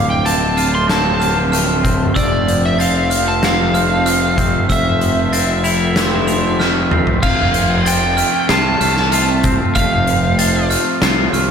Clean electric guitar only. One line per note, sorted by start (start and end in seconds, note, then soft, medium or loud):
0.00 1.21 D2 medium
0.00 1.19 D3 medium
0.00 1.52 A3 medium
0.00 0.25 C4 medium
0.00 0.57 F4 medium
0.26 0.87 C4 medium
0.57 4.07 F4 medium
0.88 1.84 C4 medium
1.21 2.16 D3 medium
1.53 4.06 A3 medium
1.84 2.79 C4 medium
2.16 4.68 F2 medium
2.48 3.74 F3 medium
2.79 3.42 C4 medium
3.42 4.36 C4 medium
3.74 5.00 F3 medium
4.06 5.64 A3 medium
4.37 5.31 C4 medium
4.69 6.27 F2 medium
5.01 6.26 F3 medium
5.32 5.94 C4 medium
5.64 7.22 E4 medium
5.96 6.90 C4 medium
6.27 7.22 F3 medium
6.59 7.23 A3 medium
6.91 7.23 C4 medium
7.23 8.81 F2 medium
7.55 9.13 C3 medium
7.86 9.44 F3 soft
8.18 8.80 A3 medium
8.49 9.12 F4 medium
8.81 10.39 A3 medium
9.13 10.71 F4 medium
9.45 11.03 C4 soft
9.76 11.34 F2 medium
10.08 11.51 C3 medium
10.39 11.51 F3 medium
10.70 11.32 A3 medium
11.03 11.51 F4 medium
11.34 11.51 A3 medium